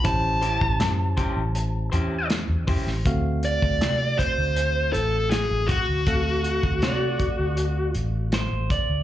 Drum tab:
HH |x-x-x-x-x-x-x-o-|x-x-x-x-x-x-x-x-|x-x-x-x-x-x-x-x-|
SD |----o-------o--o|----o-------o---|----o-------o---|
BD |o--o--o-------o-|o--o--o-------o-|o--o--o-------o-|